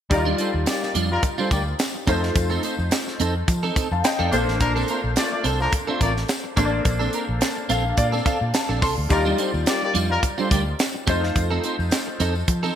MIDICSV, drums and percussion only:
0, 0, Header, 1, 2, 480
1, 0, Start_track
1, 0, Key_signature, -2, "major"
1, 0, Tempo, 562324
1, 92, Time_signature, 4, 2, 24, 8
1, 10886, End_track
2, 0, Start_track
2, 0, Title_t, "Drums"
2, 92, Note_on_c, 9, 36, 96
2, 93, Note_on_c, 9, 42, 68
2, 97, Note_on_c, 9, 54, 46
2, 178, Note_off_c, 9, 36, 0
2, 178, Note_off_c, 9, 42, 0
2, 182, Note_off_c, 9, 54, 0
2, 327, Note_on_c, 9, 42, 52
2, 329, Note_on_c, 9, 54, 43
2, 413, Note_off_c, 9, 42, 0
2, 414, Note_off_c, 9, 54, 0
2, 566, Note_on_c, 9, 42, 81
2, 574, Note_on_c, 9, 38, 101
2, 577, Note_on_c, 9, 54, 71
2, 651, Note_off_c, 9, 42, 0
2, 660, Note_off_c, 9, 38, 0
2, 662, Note_off_c, 9, 54, 0
2, 710, Note_on_c, 9, 38, 32
2, 795, Note_off_c, 9, 38, 0
2, 811, Note_on_c, 9, 42, 67
2, 822, Note_on_c, 9, 54, 51
2, 896, Note_off_c, 9, 42, 0
2, 907, Note_off_c, 9, 54, 0
2, 1047, Note_on_c, 9, 42, 81
2, 1049, Note_on_c, 9, 36, 87
2, 1058, Note_on_c, 9, 54, 42
2, 1133, Note_off_c, 9, 42, 0
2, 1135, Note_off_c, 9, 36, 0
2, 1143, Note_off_c, 9, 54, 0
2, 1179, Note_on_c, 9, 54, 29
2, 1264, Note_off_c, 9, 54, 0
2, 1290, Note_on_c, 9, 36, 83
2, 1291, Note_on_c, 9, 42, 62
2, 1292, Note_on_c, 9, 54, 45
2, 1375, Note_off_c, 9, 36, 0
2, 1376, Note_off_c, 9, 42, 0
2, 1377, Note_off_c, 9, 54, 0
2, 1527, Note_on_c, 9, 42, 77
2, 1533, Note_on_c, 9, 54, 80
2, 1535, Note_on_c, 9, 38, 127
2, 1613, Note_off_c, 9, 42, 0
2, 1618, Note_off_c, 9, 54, 0
2, 1620, Note_off_c, 9, 38, 0
2, 1769, Note_on_c, 9, 54, 48
2, 1770, Note_on_c, 9, 42, 72
2, 1771, Note_on_c, 9, 36, 91
2, 1854, Note_off_c, 9, 54, 0
2, 1856, Note_off_c, 9, 36, 0
2, 1856, Note_off_c, 9, 42, 0
2, 1905, Note_on_c, 9, 38, 31
2, 1990, Note_off_c, 9, 38, 0
2, 2010, Note_on_c, 9, 42, 72
2, 2011, Note_on_c, 9, 36, 99
2, 2016, Note_on_c, 9, 54, 45
2, 2095, Note_off_c, 9, 42, 0
2, 2096, Note_off_c, 9, 36, 0
2, 2101, Note_off_c, 9, 54, 0
2, 2148, Note_on_c, 9, 54, 31
2, 2234, Note_off_c, 9, 54, 0
2, 2245, Note_on_c, 9, 42, 54
2, 2250, Note_on_c, 9, 54, 41
2, 2330, Note_off_c, 9, 42, 0
2, 2335, Note_off_c, 9, 54, 0
2, 2383, Note_on_c, 9, 54, 24
2, 2468, Note_off_c, 9, 54, 0
2, 2485, Note_on_c, 9, 42, 82
2, 2494, Note_on_c, 9, 38, 104
2, 2495, Note_on_c, 9, 54, 71
2, 2570, Note_off_c, 9, 42, 0
2, 2579, Note_off_c, 9, 38, 0
2, 2580, Note_off_c, 9, 54, 0
2, 2627, Note_on_c, 9, 38, 32
2, 2712, Note_off_c, 9, 38, 0
2, 2729, Note_on_c, 9, 42, 77
2, 2743, Note_on_c, 9, 54, 48
2, 2815, Note_off_c, 9, 42, 0
2, 2828, Note_off_c, 9, 54, 0
2, 2970, Note_on_c, 9, 42, 78
2, 2971, Note_on_c, 9, 36, 91
2, 2976, Note_on_c, 9, 54, 45
2, 3055, Note_off_c, 9, 42, 0
2, 3056, Note_off_c, 9, 36, 0
2, 3061, Note_off_c, 9, 54, 0
2, 3100, Note_on_c, 9, 54, 28
2, 3185, Note_off_c, 9, 54, 0
2, 3212, Note_on_c, 9, 36, 84
2, 3213, Note_on_c, 9, 54, 47
2, 3215, Note_on_c, 9, 42, 61
2, 3297, Note_off_c, 9, 36, 0
2, 3298, Note_off_c, 9, 54, 0
2, 3300, Note_off_c, 9, 42, 0
2, 3450, Note_on_c, 9, 42, 76
2, 3454, Note_on_c, 9, 54, 74
2, 3457, Note_on_c, 9, 38, 121
2, 3535, Note_off_c, 9, 42, 0
2, 3539, Note_off_c, 9, 54, 0
2, 3542, Note_off_c, 9, 38, 0
2, 3691, Note_on_c, 9, 54, 49
2, 3693, Note_on_c, 9, 42, 77
2, 3776, Note_off_c, 9, 54, 0
2, 3778, Note_off_c, 9, 42, 0
2, 3827, Note_on_c, 9, 38, 33
2, 3912, Note_off_c, 9, 38, 0
2, 3929, Note_on_c, 9, 42, 68
2, 3932, Note_on_c, 9, 36, 98
2, 3935, Note_on_c, 9, 54, 39
2, 4014, Note_off_c, 9, 42, 0
2, 4017, Note_off_c, 9, 36, 0
2, 4021, Note_off_c, 9, 54, 0
2, 4068, Note_on_c, 9, 54, 32
2, 4153, Note_off_c, 9, 54, 0
2, 4165, Note_on_c, 9, 42, 54
2, 4167, Note_on_c, 9, 54, 41
2, 4250, Note_off_c, 9, 42, 0
2, 4252, Note_off_c, 9, 54, 0
2, 4404, Note_on_c, 9, 42, 80
2, 4412, Note_on_c, 9, 38, 100
2, 4413, Note_on_c, 9, 54, 68
2, 4489, Note_off_c, 9, 42, 0
2, 4498, Note_off_c, 9, 38, 0
2, 4498, Note_off_c, 9, 54, 0
2, 4646, Note_on_c, 9, 42, 71
2, 4659, Note_on_c, 9, 54, 51
2, 4731, Note_off_c, 9, 42, 0
2, 4744, Note_off_c, 9, 54, 0
2, 4782, Note_on_c, 9, 54, 28
2, 4867, Note_off_c, 9, 54, 0
2, 4886, Note_on_c, 9, 42, 80
2, 4888, Note_on_c, 9, 36, 87
2, 4893, Note_on_c, 9, 54, 42
2, 4971, Note_off_c, 9, 42, 0
2, 4974, Note_off_c, 9, 36, 0
2, 4978, Note_off_c, 9, 54, 0
2, 5128, Note_on_c, 9, 42, 60
2, 5129, Note_on_c, 9, 36, 82
2, 5135, Note_on_c, 9, 54, 42
2, 5214, Note_off_c, 9, 36, 0
2, 5214, Note_off_c, 9, 42, 0
2, 5220, Note_off_c, 9, 54, 0
2, 5266, Note_on_c, 9, 38, 35
2, 5351, Note_off_c, 9, 38, 0
2, 5364, Note_on_c, 9, 42, 78
2, 5372, Note_on_c, 9, 38, 125
2, 5377, Note_on_c, 9, 54, 78
2, 5450, Note_off_c, 9, 42, 0
2, 5457, Note_off_c, 9, 38, 0
2, 5463, Note_off_c, 9, 54, 0
2, 5607, Note_on_c, 9, 42, 70
2, 5609, Note_on_c, 9, 36, 92
2, 5611, Note_on_c, 9, 54, 49
2, 5693, Note_off_c, 9, 42, 0
2, 5694, Note_off_c, 9, 36, 0
2, 5696, Note_off_c, 9, 54, 0
2, 5848, Note_on_c, 9, 42, 72
2, 5850, Note_on_c, 9, 36, 92
2, 5857, Note_on_c, 9, 54, 43
2, 5933, Note_off_c, 9, 42, 0
2, 5935, Note_off_c, 9, 36, 0
2, 5942, Note_off_c, 9, 54, 0
2, 5987, Note_on_c, 9, 54, 30
2, 6072, Note_off_c, 9, 54, 0
2, 6085, Note_on_c, 9, 42, 56
2, 6087, Note_on_c, 9, 54, 43
2, 6170, Note_off_c, 9, 42, 0
2, 6172, Note_off_c, 9, 54, 0
2, 6324, Note_on_c, 9, 42, 87
2, 6332, Note_on_c, 9, 38, 98
2, 6337, Note_on_c, 9, 54, 72
2, 6409, Note_off_c, 9, 42, 0
2, 6418, Note_off_c, 9, 38, 0
2, 6422, Note_off_c, 9, 54, 0
2, 6568, Note_on_c, 9, 42, 77
2, 6584, Note_on_c, 9, 54, 46
2, 6654, Note_off_c, 9, 42, 0
2, 6670, Note_off_c, 9, 54, 0
2, 6806, Note_on_c, 9, 42, 78
2, 6808, Note_on_c, 9, 36, 78
2, 6817, Note_on_c, 9, 54, 41
2, 6891, Note_off_c, 9, 42, 0
2, 6893, Note_off_c, 9, 36, 0
2, 6902, Note_off_c, 9, 54, 0
2, 6943, Note_on_c, 9, 54, 29
2, 7028, Note_off_c, 9, 54, 0
2, 7049, Note_on_c, 9, 36, 93
2, 7051, Note_on_c, 9, 42, 61
2, 7053, Note_on_c, 9, 54, 42
2, 7135, Note_off_c, 9, 36, 0
2, 7137, Note_off_c, 9, 42, 0
2, 7138, Note_off_c, 9, 54, 0
2, 7288, Note_on_c, 9, 42, 81
2, 7295, Note_on_c, 9, 38, 124
2, 7297, Note_on_c, 9, 54, 75
2, 7373, Note_off_c, 9, 42, 0
2, 7380, Note_off_c, 9, 38, 0
2, 7382, Note_off_c, 9, 54, 0
2, 7530, Note_on_c, 9, 46, 72
2, 7531, Note_on_c, 9, 36, 93
2, 7531, Note_on_c, 9, 54, 49
2, 7615, Note_off_c, 9, 46, 0
2, 7616, Note_off_c, 9, 54, 0
2, 7617, Note_off_c, 9, 36, 0
2, 7769, Note_on_c, 9, 42, 70
2, 7771, Note_on_c, 9, 36, 92
2, 7776, Note_on_c, 9, 54, 43
2, 7854, Note_off_c, 9, 42, 0
2, 7857, Note_off_c, 9, 36, 0
2, 7862, Note_off_c, 9, 54, 0
2, 7907, Note_on_c, 9, 54, 33
2, 7992, Note_off_c, 9, 54, 0
2, 8008, Note_on_c, 9, 42, 56
2, 8010, Note_on_c, 9, 54, 44
2, 8094, Note_off_c, 9, 42, 0
2, 8095, Note_off_c, 9, 54, 0
2, 8144, Note_on_c, 9, 54, 22
2, 8229, Note_off_c, 9, 54, 0
2, 8248, Note_on_c, 9, 42, 80
2, 8256, Note_on_c, 9, 38, 97
2, 8257, Note_on_c, 9, 54, 77
2, 8333, Note_off_c, 9, 42, 0
2, 8342, Note_off_c, 9, 38, 0
2, 8343, Note_off_c, 9, 54, 0
2, 8491, Note_on_c, 9, 42, 70
2, 8503, Note_on_c, 9, 54, 47
2, 8576, Note_off_c, 9, 42, 0
2, 8588, Note_off_c, 9, 54, 0
2, 8732, Note_on_c, 9, 36, 87
2, 8732, Note_on_c, 9, 42, 81
2, 8733, Note_on_c, 9, 54, 43
2, 8817, Note_off_c, 9, 36, 0
2, 8817, Note_off_c, 9, 42, 0
2, 8819, Note_off_c, 9, 54, 0
2, 8859, Note_on_c, 9, 54, 28
2, 8945, Note_off_c, 9, 54, 0
2, 8973, Note_on_c, 9, 36, 92
2, 8977, Note_on_c, 9, 42, 63
2, 8977, Note_on_c, 9, 54, 47
2, 9058, Note_off_c, 9, 36, 0
2, 9062, Note_off_c, 9, 42, 0
2, 9062, Note_off_c, 9, 54, 0
2, 9212, Note_on_c, 9, 42, 81
2, 9219, Note_on_c, 9, 38, 113
2, 9219, Note_on_c, 9, 54, 77
2, 9297, Note_off_c, 9, 42, 0
2, 9304, Note_off_c, 9, 38, 0
2, 9304, Note_off_c, 9, 54, 0
2, 9449, Note_on_c, 9, 54, 49
2, 9454, Note_on_c, 9, 36, 96
2, 9454, Note_on_c, 9, 42, 75
2, 9535, Note_off_c, 9, 54, 0
2, 9539, Note_off_c, 9, 36, 0
2, 9539, Note_off_c, 9, 42, 0
2, 9592, Note_on_c, 9, 38, 31
2, 9677, Note_off_c, 9, 38, 0
2, 9695, Note_on_c, 9, 36, 86
2, 9695, Note_on_c, 9, 42, 68
2, 9696, Note_on_c, 9, 54, 45
2, 9780, Note_off_c, 9, 36, 0
2, 9780, Note_off_c, 9, 42, 0
2, 9782, Note_off_c, 9, 54, 0
2, 9931, Note_on_c, 9, 54, 41
2, 9932, Note_on_c, 9, 42, 56
2, 10016, Note_off_c, 9, 54, 0
2, 10017, Note_off_c, 9, 42, 0
2, 10070, Note_on_c, 9, 54, 25
2, 10155, Note_off_c, 9, 54, 0
2, 10169, Note_on_c, 9, 42, 83
2, 10178, Note_on_c, 9, 38, 108
2, 10179, Note_on_c, 9, 54, 70
2, 10254, Note_off_c, 9, 42, 0
2, 10263, Note_off_c, 9, 38, 0
2, 10264, Note_off_c, 9, 54, 0
2, 10413, Note_on_c, 9, 42, 74
2, 10421, Note_on_c, 9, 54, 50
2, 10499, Note_off_c, 9, 42, 0
2, 10507, Note_off_c, 9, 54, 0
2, 10545, Note_on_c, 9, 54, 29
2, 10630, Note_off_c, 9, 54, 0
2, 10652, Note_on_c, 9, 42, 84
2, 10653, Note_on_c, 9, 36, 80
2, 10657, Note_on_c, 9, 54, 41
2, 10737, Note_off_c, 9, 42, 0
2, 10739, Note_off_c, 9, 36, 0
2, 10742, Note_off_c, 9, 54, 0
2, 10786, Note_on_c, 9, 54, 29
2, 10872, Note_off_c, 9, 54, 0
2, 10886, End_track
0, 0, End_of_file